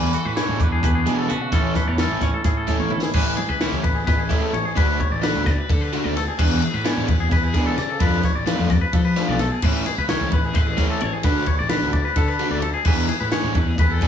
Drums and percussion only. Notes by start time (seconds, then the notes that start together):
0.13 closed hi-hat
0.37 snare, closed hi-hat
0.60 kick, closed hi-hat
0.83 kick, closed hi-hat
1.06 closed hi-hat
1.29 closed hi-hat
1.52 kick, closed hi-hat
1.75 kick, snare, closed hi-hat
1.98 snare, closed hi-hat
2.21 kick, snare, closed hi-hat
2.44 kick, snare, closed hi-hat
2.68 kick, closed hi-hat
2.79 high tom
2.90 mid tom
3.02 snare
3.13 kick, crash
3.37 ride
3.60 snare, ride
3.84 kick, ride
4.07 kick, snare, ride
4.30 kick, ride
4.54 ride
4.77 kick, ride
5.00 kick, ride
5.23 snare, ride
5.46 kick, snare, ride
5.69 kick, ride
5.93 ride
6.17 snare, ride
6.39 kick, crash
6.62 ride
6.85 snare, ride
7.08 kick, ride
7.31 kick, snare, ride
7.54 kick, snare, ride
7.78 snare, ride
8.00 kick, ride
8.23 kick, snare, ride
8.47 snare, ride
8.70 kick, snare, ride
8.93 kick, ride
9.16 snare, ride
9.39 snare, ride
9.62 kick, crash
9.86 snare, ride
10.09 snare, ride
10.31 kick, ride
10.55 kick, snare, ride
10.78 kick, snare, ride
11.00 ride
11.23 kick, ride
11.46 kick, ride
11.69 snare, ride
11.93 kick, ride
12.16 kick, ride
12.39 ride
12.62 ride
12.85 kick, crash
13.09 snare, ride
13.31 snare, ride
13.55 kick, ride
13.78 kick, ride
14.01 kick, ride